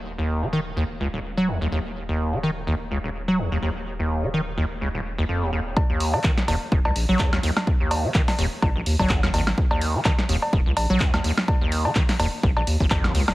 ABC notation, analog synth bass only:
X:1
M:4/4
L:1/16
Q:"Swing 16ths" 1/4=126
K:Ebm
V:1 name="Analog synth bass" clef=bass
E,,,16- | E,,,16- | E,,,16 | z6 E,,, z E,,, D,, B,,, B,,, z4 |
z6 E,,, z B,,, B,,, E,, A,,,4- A,,, | z6 E,,, z E,,, D,, B,,, B,,, z4 | z6 E,,, z B,,, B,,, E,, A,,,3 D,, E,,, |]